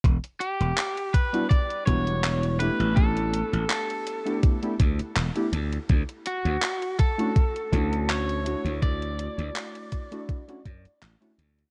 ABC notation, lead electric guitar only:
X:1
M:4/4
L:1/8
Q:"Swing 16ths" 1/4=82
K:D
V:1 name="Lead electric guitar"
z G2 B d c2 B | A2 A2 z4 | z F2 A3 c2 | d6 z2 |]